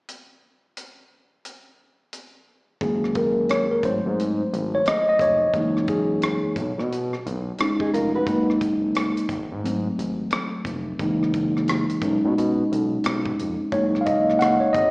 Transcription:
0.09 closed hi-hat medium
0.77 closed hi-hat medium
1.45 closed hi-hat medium
2.13 closed hi-hat medium
2.81 3.66 F#1 loud
2.81 3.80 D#3 soft
2.81 3.80 G#3 soft
2.81 3.81 A#3 medium
2.81 3.17 G#4 medium
2.81 kick loud
2.81 closed hi-hat medium
3.04 cross-stick soft
3.15 3.51 A#4 medium
3.15 kick medium
3.15 closed hi-hat medium
3.49 3.71 C#5 medium
3.49 cross-stick medium
3.49 closed hi-hat medium
3.71 3.85 A#4 medium
3.83 4.00 G#1 loud
3.83 4.32 F#3 soft
3.83 4.33 A3 soft
3.83 4.33 C4 medium
3.83 4.76 C5 medium
3.83 kick medium
3.83 closed hi-hat medium
4.06 4.43 G#2 medium
4.20 closed hi-hat medium
4.53 4.80 G#1 loud
4.53 closed hi-hat medium
4.75 4.87 C#5 medium
4.86 5.06 D#5 medium
4.86 cross-stick loud
4.86 closed hi-hat medium
5.09 5.22 D#5 medium
5.19 5.47 F1 medium
5.19 5.91 C#5 medium
5.19 kick medium
5.19 closed hi-hat medium
5.53 6.39 F#1 medium
5.53 6.53 E3 soft
5.53 6.53 G#3 soft
5.53 6.53 A#3 soft
5.53 6.53 D#4 medium
5.53 kick medium
5.53 closed hi-hat medium
5.77 cross-stick soft
5.88 6.53 G#4 medium
5.88 kick medium
5.88 closed hi-hat medium
6.22 cross-stick loud
6.22 closed hi-hat medium
6.56 6.73 B1 loud
6.56 kick medium
6.56 closed hi-hat medium
6.78 7.15 B2 medium
6.78 cross-stick soft
6.92 closed hi-hat medium
7.13 cross-stick soft
7.26 7.52 B1 loud
7.26 closed hi-hat medium
7.58 8.24 G#3 soft
7.58 8.24 C#4 soft
7.58 8.25 D#4 medium
7.58 cross-stick loud
7.58 closed hi-hat medium
7.80 7.93 D#4 medium
7.80 7.93 G#4 medium
7.80 kick medium
7.94 8.20 F1 medium
7.94 8.13 F4 medium
7.94 8.13 A#4 medium
7.94 closed hi-hat medium
8.15 8.47 F#4 medium
8.15 8.47 B4 medium
8.27 9.12 F#1 medium
8.27 9.25 G#3 soft
8.27 9.26 A#3 soft
8.27 9.26 D#4 medium
8.27 kick loud
8.27 closed hi-hat medium
8.50 cross-stick soft
8.61 kick medium
8.61 closed hi-hat medium
8.95 cross-stick loud
8.95 closed hi-hat medium
9.17 closed hi-hat medium
9.29 9.46 G#1 loud
9.29 kick medium
9.29 closed hi-hat medium
9.51 9.88 G#2 medium
9.64 10.62 F#3 medium
9.64 10.62 A3 soft
9.64 10.63 C4 medium
9.64 closed hi-hat medium
9.98 10.25 G#1 loud
9.98 closed hi-hat medium
10.31 cross-stick loud
10.31 closed hi-hat medium
10.65 10.92 F1 medium
10.65 kick medium
10.65 closed hi-hat medium
10.99 11.85 F#1 loud
10.99 11.99 E3 soft
10.99 11.98 G#3 soft
10.99 11.99 A#3 soft
10.99 11.99 D#4 medium
10.99 kick loud
10.99 closed hi-hat medium
11.23 cross-stick soft
11.34 kick medium
11.34 closed hi-hat medium
11.57 cross-stick soft
11.68 cross-stick loud
11.68 closed hi-hat medium
11.90 closed hi-hat soft
12.02 12.18 B1 medium
12.02 13.01 G#3 soft
12.02 13.01 C#4 soft
12.02 13.01 D#4 medium
12.02 kick medium
12.02 closed hi-hat medium
12.24 12.34 B2 medium
12.38 12.64 B2 medium
12.38 closed hi-hat medium
12.72 12.98 B1 medium
12.72 closed hi-hat medium
13.04 13.32 B1 medium
13.04 cross-stick loud
13.04 closed hi-hat medium
13.25 kick medium
13.39 13.56 F1 medium
13.39 closed hi-hat medium
13.72 14.57 F#1 loud
13.72 14.21 G#3 soft
13.72 14.21 A#3 soft
13.72 14.21 D#4 soft
13.72 14.02 C#5 medium
13.72 kick loud
13.72 closed hi-hat medium
13.95 cross-stick soft
14.01 14.06 F5 medium
14.06 14.41 D#5 medium
14.06 kick medium
14.06 closed hi-hat medium
14.30 cross-stick soft
14.39 14.61 F#5 medium
14.39 cross-stick medium
14.39 closed hi-hat medium
14.60 14.74 C#5 medium
14.73 14.91 G#1 loud
14.73 14.91 D#5 medium
14.73 kick loud
14.73 closed hi-hat medium

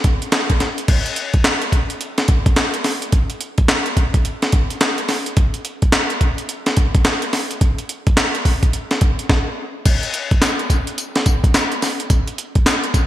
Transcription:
0.04 kick loud
0.04 closed hi-hat medium
0.22 closed hi-hat soft
0.32 snare loud
0.32 clap medium
0.32 closed hi-hat medium
0.50 kick medium
0.50 closed hi-hat medium
0.60 snare medium
0.60 closed hi-hat medium
0.78 closed hi-hat medium
0.88 kick loud
0.88 closed hi-hat medium
0.88 crash medium
1.06 closed hi-hat medium
1.16 closed hi-hat medium
1.34 kick medium
1.34 closed hi-hat soft
1.44 snare loud
1.44 clap loud
1.44 closed hi-hat medium
1.62 closed hi-hat soft
1.72 kick medium
1.72 closed hi-hat medium
1.90 closed hi-hat medium
2.01 closed hi-hat medium
2.18 snare medium
2.18 closed hi-hat medium
2.28 kick loud
2.28 closed hi-hat medium
2.46 kick loud
2.46 closed hi-hat medium
2.56 snare loud
2.56 clap medium
2.56 closed hi-hat medium
2.74 closed hi-hat medium
2.84 snare medium
2.84 open hi-hat medium
3.02 closed hi-hat medium
3.12 kick loud
3.12 closed hi-hat medium
3.30 closed hi-hat medium
3.41 closed hi-hat medium
3.58 kick loud
3.58 closed hi-hat soft
3.68 snare loud
3.68 clap loud
3.68 closed hi-hat medium
3.86 closed hi-hat medium
3.97 kick medium
3.97 closed hi-hat medium
4.14 kick medium
4.14 closed hi-hat medium
4.25 closed hi-hat medium
4.42 snare medium
4.42 closed hi-hat medium
4.52 kick loud
4.52 closed hi-hat medium
4.70 closed hi-hat medium
4.81 snare loud
4.81 clap medium
4.81 closed hi-hat medium
4.98 closed hi-hat medium
5.09 snare medium
5.09 open hi-hat medium
5.26 closed hi-hat medium
5.37 kick loud
5.37 closed hi-hat medium
5.54 closed hi-hat medium
5.65 closed hi-hat medium
5.82 kick medium
5.82 closed hi-hat soft
5.92 snare loud
5.92 clap loud
5.92 closed hi-hat medium
6.10 closed hi-hat soft
6.21 kick medium
6.21 closed hi-hat medium
6.38 closed hi-hat medium
6.49 closed hi-hat medium
6.66 snare medium
6.66 closed hi-hat medium
6.77 kick loud
6.77 closed hi-hat medium
6.95 kick loud
6.95 closed hi-hat medium
7.05 snare loud
7.05 clap medium
7.05 closed hi-hat medium
7.22 closed hi-hat medium
7.33 snare medium
7.33 open hi-hat medium
7.51 closed hi-hat medium
7.61 kick loud
7.61 closed hi-hat medium
7.78 closed hi-hat medium
7.89 closed hi-hat medium
8.07 kick loud
8.07 closed hi-hat soft
8.17 snare loud
8.17 clap loud
8.17 closed hi-hat medium
8.35 closed hi-hat soft
8.45 kick medium
8.45 open hi-hat medium
8.63 kick medium
8.63 closed hi-hat medium
8.73 closed hi-hat medium
8.91 snare medium
8.91 closed hi-hat medium
9.01 kick loud
9.01 closed hi-hat medium
9.19 closed hi-hat medium
9.29 kick loud
9.29 snare medium
9.85 kick loud
9.85 closed hi-hat medium
9.85 crash medium
9.85 tambourine medium
10.03 closed hi-hat medium
10.14 closed hi-hat medium
10.31 kick loud
10.31 closed hi-hat soft
10.42 snare loud
10.42 clap medium
10.42 closed hi-hat medium
10.42 tambourine loud
10.59 closed hi-hat soft
10.70 kick medium
10.70 closed hi-hat medium
10.70 tambourine medium
10.87 closed hi-hat medium
10.98 closed hi-hat medium
10.98 tambourine medium
11.15 snare medium
11.15 closed hi-hat medium
11.26 kick loud
11.26 closed hi-hat medium
11.26 tambourine medium
11.44 kick loud
11.44 closed hi-hat medium
11.54 snare loud
11.54 clap medium
11.54 closed hi-hat medium
11.54 tambourine loud
11.72 closed hi-hat medium
11.82 snare medium
11.82 open hi-hat medium
11.82 tambourine medium
12.00 closed hi-hat medium
12.10 kick loud
12.10 closed hi-hat medium
12.10 tambourine medium
12.28 closed hi-hat medium
12.38 closed hi-hat medium
12.55 kick loud
12.55 closed hi-hat soft
12.66 snare loud
12.66 clap loud
12.66 closed hi-hat medium
12.66 tambourine medium
12.84 closed hi-hat medium
12.94 kick medium
12.94 closed hi-hat medium
12.94 tambourine medium

